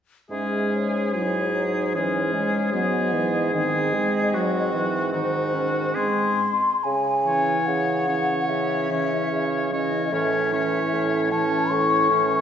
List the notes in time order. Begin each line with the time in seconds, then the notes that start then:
0.30 G#2 G#3 C#4 G#4 E5
0.73 C#5
1.13 F#3 E4 G#4
1.56 D#4
1.94 E3 C#4 G#4
2.33 G#3
2.72 F#3 B3 G#4 D#5
3.12 E3
3.53 D#3 C4 G#4 D#5
3.94 G#3
4.34 F#3 F#4
4.73 E3
5.12 D#3 D#4 F#4 C5
5.54 C#4
5.95 G#3 C4 G#4 C6
6.84 C#3 G#5
7.25 E3 C#4 C#5
7.66 C#3 F#5
8.08 E3 C#4 C#5
8.49 C#3 E5
8.91 E3 C#4 C#5
9.31 C#3
9.71 E3 C#4 C#5 D#5
10.12 A2 E3 C#4 C#5 E5
10.53 E3 C#4 C#5
10.93 A2
11.32 E3 C#4 C#5 A5
11.71 A2 C#6
12.10 E3 C#4 C#5